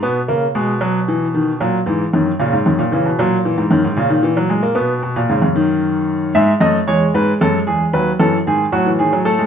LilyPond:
<<
  \new Staff \with { instrumentName = "Grand piano" } { \time 12/8 \key fis \dorian \tempo 4. = 76 r1. | r1. | e''8 dis''8 cis''8 b'8 a'8 gis'8 b'8 a'8 gis'8 fis'8 gis'8 a'8 | }
  \new Staff \with { instrumentName = "Grand piano" } { \clef bass \time 12/8 \key fis \dorian << { b8 ais8 gis8 fis8 e8 dis8 fis8 e8 dis8 cis8 dis8 e8 | fis8 e8 dis8 cis16 dis16 e16 fis16 gis16 ais16 b8 b,8 cis8 dis4. | gis8 a8 gis2 fis8 e8 dis8 fis16 e16 dis16 fis16 a16 gis16 | } \\ { b,8 cis8 b,2 ais,8 gis,8 fis,8 ais,16 gis,16 fis,16 ais,16 cis16 b,16 | ais,8. gis,16 fis,16 gis,16 ais,4. b,8. ais,16 gis,16 fis,4.~ fis,16 | gis,8 fis,8 e,8 gis,8 fis,8 e,8 dis,8 fis,8 gis,8 a,4. | } >> }
>>